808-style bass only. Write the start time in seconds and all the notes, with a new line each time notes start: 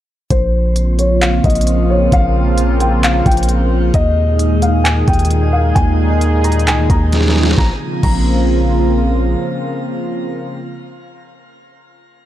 0.31 A#1
1.44 A#1
2.12 A#1
3.26 A#1
3.94 D#2
5.08 D#2
5.76 D#2
6.67 C#2
6.78 D#2
6.90 D#2
7.58 A#1
8.03 A#1